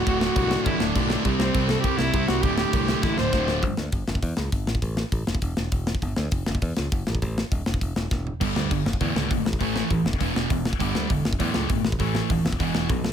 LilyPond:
<<
  \new Staff \with { instrumentName = "Viola" } { \time 4/4 \key d \mixolydian \tempo 4 = 201 fis'8 fis'4. e'8 d'4 r8 | r8 c'4 a'8 g'8 e'4 fis'8 | g'8 g'4. e'8 c''4 r8 | \key g \lydian r1 |
r1 | r1 | r1 | r1 |
r1 | r1 | r1 | }
  \new Staff \with { instrumentName = "Distorted electric guitar" } { \clef bass \time 4/4 \key d \mixolydian <d, a, d>2~ <d, a, d>8 <d, a, d>8 <d, a, d>4 | <c g c'>2~ <c g c'>8 <c g c'>8 <c g c'>4 | <d, a, d>2~ <d, a, d>8 <d, a, d>8 <d, a, d>4 | \key g \lydian r1 |
r1 | r1 | r1 | r1 |
r1 | r1 | r1 | }
  \new Staff \with { instrumentName = "Distorted electric guitar" } { \clef bass \time 4/4 \key d \mixolydian <d, a, d>4 <d, a, d>4 <d, a, d>4 <d, a, d>4 | <c g c'>4 <c g c'>4 <c g c'>4 <c g c'>4 | <d, a, d>4 <d, a, d>4 <d, a, d>4 <d, a, d>4 | \key g \lydian r1 |
r1 | r1 | r1 | <g, d g>4 <g, d>8 r8 <d, a, d>4 <d, a,>8 r8 |
<a, e a>4 <a, e>8 r8 <e, b, e>4 <e, b,>8 r8 | <g, d g>4 <g, d>8 r8 <d, a, d>4 <d, a,>8 r8 | <a, e a>4 <a, e>8 r8 <e, b, e>4 <e, b,>8 r8 | }
  \new Staff \with { instrumentName = "Distorted electric guitar" } { \clef bass \time 4/4 \key d \mixolydian <d, a, d>4 <d, a, d>4 <d, a, d>4 <d, a, d>4 | <c g c'>4 <c g c'>4 <c g c'>4 <c g c'>4 | <d, a, d>4 <d, a, d>4 <d, a, d>4 <d, a, d>4 | \key g \lydian r1 |
r1 | r1 | r1 | <g, d g>4 <g, d>8 r8 <d, a, d>4 <d, a,>8 r8 |
<a, e a>4 <a, e>8 r8 <e, b, e>4 <e, b,>8 r8 | <g, d g>4 <g, d>8 r8 <d, a, d>4 <d, a,>8 r8 | <a, e a>4 <a, e>8 r8 <e, b, e>4 <e, b,>8 r8 | }
  \new Staff \with { instrumentName = "Picked electric bass" } { \clef bass \time 4/4 \key d \mixolydian d,,4 c,4 a,,8 d,,8 b,,4 | c,8 c,8 c,4 c,8 c,8 c,8 c,8 | d,,4 c,4 a,,8 d,,8 d,,4 | \key g \lydian g,,8 d,8 g,,8 fis,,8 e,8 cis,8 g,,8 a,,8 |
a,,4 a,,8 e,,8 e,,8 e,,8 e,,4 | g,,8 d,8 f,,8 fis,,8 e,8 cis,8 fis,,8 a,,8 | a,,4 ees,,8 e,,8 e,,8 e,,8 e,,4 | g,,8 d,8 g,,8 fis,,8 e,8 cis,8 fis,,8 a,,8 |
a,,4 a,,8 e,,8 e,,8 e,,8 e,,4 | g,,8 d,8 e,,8 fis,,8 e,8 cis,8 g,,8 a,,8 | a,,4 ees,,8 e,,8 e,,8 e,,8 b,,4 | }
  \new DrumStaff \with { instrumentName = "Drums" } \drummode { \time 4/4 <cymc bd>8 sn8 <cymc bd>8 sn8 <cymc bd>8 sn8 <cymc bd>8 sn8 | <cymc bd>8 sn8 <cymc bd>8 sn8 <cymc bd>8 sn8 <cymc bd>8 sn8 | <cymc bd>8 sn8 <cymc bd>8 sn8 <bd sn>8 sn8 <bd sn>8 sn8 | <hho bd>8 sn8 <hho bd>8 sn16 bd16 <hho bd>8 sn8 <hho bd>8 sn16 bd16 |
<hho bd>8 sn8 <hho bd>8 sn16 bd16 <hho bd>8 sn8 <hho bd>8 sn16 bd16 | <hho bd>8 sn8 <hho bd>8 sn16 bd16 <hho bd>8 sn8 <hho bd>8 sn16 bd16 | <hho bd>8 sn8 <hho bd>8 sn16 bd16 <hho bd>8 sn8 <bd sn>8 tomfh8 | <cymc hho bd>8 sn8 <hho bd>8 sn16 bd16 <hho bd>8 sn8 <hho bd>8 sn16 bd16 |
<hho bd>8 sn8 <hho bd>8 sn16 bd16 <hho bd>8 sn8 <hho bd>8 sn16 bd16 | <hho bd>8 sn8 <hho bd>8 sn16 bd16 <hho bd>8 sn8 <hho bd>8 sn16 bd16 | <hho bd>8 sn8 <hho bd>8 sn16 bd16 <hho bd>8 sn8 <hho bd>8 sn8 | }
>>